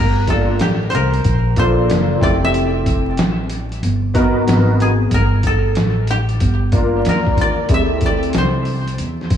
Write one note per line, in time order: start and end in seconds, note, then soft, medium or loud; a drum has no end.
0.00 0.57 G1 loud
0.00 0.61 G4 medium
0.00 0.36 A#4 medium
0.27 0.53 A#3 medium
0.27 0.54 D4 medium
0.27 0.54 F4 medium
0.27 0.54 A4 medium
0.27 1.01 A4 medium
0.27 kick medium
0.27 closed hi-hat medium
0.59 0.91 A1 medium
0.59 0.69 G4 medium
0.59 snare loud
0.59 closed hi-hat medium
0.90 1.23 C2 medium
0.90 1.59 C5 medium
0.90 closed hi-hat medium
0.95 2.79 A#4 medium
1.14 closed hi-hat soft
1.24 1.86 A#1 medium
1.24 kick medium
1.24 closed hi-hat medium
1.56 2.21 A#3 medium
1.56 2.21 D4 medium
1.56 2.22 F4 medium
1.56 2.20 A4 medium
1.56 3.31 C5 medium
1.56 kick medium
1.56 closed hi-hat medium
1.90 2.20 F#1 medium
1.90 snare loud
1.90 closed hi-hat medium
2.20 3.14 F1 medium
2.20 3.26 C4 medium
2.20 3.26 E4 medium
2.20 3.26 G4 medium
2.20 3.27 A4 medium
2.20 3.83 D5 medium
2.20 kick medium
2.20 closed hi-hat medium
2.45 3.94 E5 medium
2.54 closed hi-hat medium
2.86 kick medium
2.86 closed hi-hat medium
3.17 3.80 A1 medium
3.17 snare loud
3.17 closed hi-hat medium
3.50 closed hi-hat medium
3.72 closed hi-hat soft
3.83 4.44 G1 medium
3.83 closed hi-hat medium
4.14 4.40 B3 medium
4.14 4.40 D#4 medium
4.14 4.40 F#4 medium
4.14 4.41 A#4 loud
4.14 kick medium
4.14 closed hi-hat medium
4.47 5.08 G#1 medium
4.47 4.88 B3 medium
4.47 4.88 D#4 medium
4.47 4.88 F#4 medium
4.47 4.88 A#4 medium
4.47 snare loud
4.47 closed hi-hat medium
4.80 5.53 G#4 medium
4.80 closed hi-hat medium
5.11 5.73 G1 medium
5.11 5.23 A#4 medium
5.11 kick loud
5.11 closed hi-hat medium
5.43 7.15 A4 medium
5.43 kick medium
5.43 closed hi-hat medium
5.75 6.38 A1 medium
5.75 snare loud
5.75 closed hi-hat medium
6.07 8.15 G4 medium
6.07 closed hi-hat medium
6.29 closed hi-hat soft
6.40 7.02 G1 medium
6.40 kick medium
6.40 closed hi-hat medium
6.72 7.65 A#3 medium
6.72 7.65 D4 medium
6.72 7.65 F4 medium
6.72 7.65 A#4 medium
6.72 kick medium
6.72 closed hi-hat medium
7.05 7.67 D#2 medium
7.05 8.93 A#4 medium
7.05 snare loud
7.05 closed hi-hat medium
7.27 kick medium
7.37 kick medium
7.37 closed hi-hat medium
7.41 7.50 D5 loud
7.69 8.31 D2 loud
7.69 8.62 C4 medium
7.69 8.62 E4 soft
7.69 8.62 G4 soft
7.69 7.78 G#4 soft
7.69 kick loud
7.69 closed hi-hat medium
7.74 8.65 A4 medium
7.74 9.23 E5 loud
8.01 kick medium
8.01 closed hi-hat medium
8.06 9.37 D5 medium
8.23 closed hi-hat soft
8.33 8.96 C2 medium
8.33 snare medium
8.33 closed hi-hat medium
8.38 9.37 C5 medium
8.65 open hi-hat medium
8.88 closed hi-hat soft
8.98 9.37 E2 medium
8.98 closed hi-hat medium
9.21 snare soft
9.30 kick medium
9.30 closed hi-hat medium